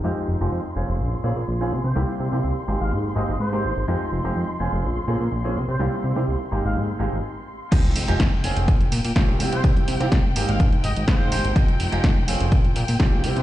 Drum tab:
CC |----------------|----------------|----------------|----------------|
HH |----------------|----------------|----------------|----------------|
SD |----------------|----------------|----------------|----------------|
BD |----------------|----------------|----------------|----------------|

CC |x---------------|----------------|----------------|
HH |xxoxx-oxxxoox-ox|xxoxx-oxxxoxx-ox|xxoxx-oxxxoox-ox|
SD |----o-------o---|----o-------o---|----o-------o---|
BD |o---o---o---o---|o---o---o---o---|o---o---o---o---|